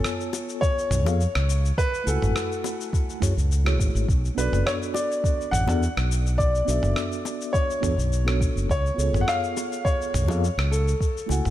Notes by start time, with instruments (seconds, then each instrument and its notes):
Already playing: tine electric piano B3 F4 A4 C#5 G#5, grand piano A4
0.04 cross-stick, shaker
0.21 shaker
0.33 high bongo, shaker
0.49 shaker
0.61 grand piano C#5, kick, shaker
0.79 shaker
0.91 fingered electric bass B1, mid tom, shaker
1.05 fingered electric bass F2, tine electric piano B3 F4 G#4 A4 F5, high bongo, shaker
1.21 shaker
1.35 fingered electric bass C#2, cross-stick, shaker
1.50 shaker
1.65 shaker
1.78 grand piano B4, kick, shaker
1.94 shaker
2.04 fingered electric bass C#2, tine electric piano A3 E4 F#4, grand piano A4, shaker
2.08 tine electric piano F#5 G#5
2.22 fingered electric bass G#1, mid tom, shaker
2.36 cross-stick, shaker
2.52 shaker
2.64 high bongo, shaker
2.81 shaker
2.93 kick, shaker
3.10 shaker
3.20 fingered electric bass F#2, tine electric piano A3 E4 F#4 G#4 C#5, kick, mid tom, shaker
3.37 fingered electric bass C#2, shaker
3.52 shaker
3.64 tine electric piano A3 E4 F#4 G#4 C#5, cross-stick, shaker
3.80 fingered electric bass G#1, kick, shaker
3.95 fingered electric bass G#1, shaker
4.08 fingered electric bass B1, kick, shaker
4.25 shaker
4.35 fingered electric bass B1, tine electric piano B3 D4 F#4, grand piano B4, shaker
4.39 tine electric piano A4 D5
4.52 fingered electric bass F#1, mid tom, shaker
4.66 grand piano C#5, cross-stick, shaker
4.83 shaker
4.94 grand piano D5, high bongo, shaker
5.12 shaker
5.24 kick, shaker
5.41 shaker
5.51 fingered electric bass A1, grand piano F#5, mid tom, shaker
5.67 fingered electric bass E2, tine electric piano B3 D4 F#4 A4 D5, high bongo, shaker
5.83 shaker
5.97 fingered electric bass B1, cross-stick, shaker
6.12 shaker
6.27 shaker
6.38 grand piano D5, kick, shaker
6.55 shaker
6.65 fingered electric bass B1, tine electric piano B3 D4 F#4, shaker
6.69 tine electric piano A4 E5
6.83 fingered electric bass F#1, mid tom, shaker
6.96 cross-stick, shaker
7.12 shaker
7.25 high bongo, shaker
7.42 shaker
7.53 grand piano C#5, kick, shaker
7.70 shaker
7.81 fingered electric bass E2, tine electric piano B3 D4 F#4 A4 C#5, kick, mid tom, shaker
7.98 fingered electric bass B1, shaker
8.13 shaker
8.25 tine electric piano B3 D4 F#4 A4 C#5, cross-stick, shaker
8.41 kick, shaker
8.56 fingered electric bass F#1, shaker
8.69 fingered electric bass C#2, grand piano C#5, kick, shaker
8.86 shaker
8.94 fingered electric bass C#2, tine electric piano B3 F4 G#4
8.99 tine electric piano A4 C#5, shaker
9.13 fingered electric bass G#1, mid tom, shaker
9.21 grand piano F#5
9.28 grand piano F5, cross-stick, shaker
9.44 shaker
9.57 high bongo, shaker
9.73 shaker
9.85 grand piano C#5, kick, shaker
10.02 shaker
10.14 fingered electric bass B1, mid tom, shaker
10.27 fingered electric bass F2, tine electric piano B3 F4 G#4 A4 F5, high bongo, shaker
10.44 shaker
10.58 fingered electric bass C#2, cross-stick, shaker
10.72 grand piano A4, shaker
10.88 shaker
11.01 kick, shaker
11.17 shaker
11.26 fingered electric bass C#2, tine electric piano A3 E4 F#4, high bongo
11.31 tine electric piano F#5 G#5, shaker
11.45 fingered electric bass G#1, mid tom, shaker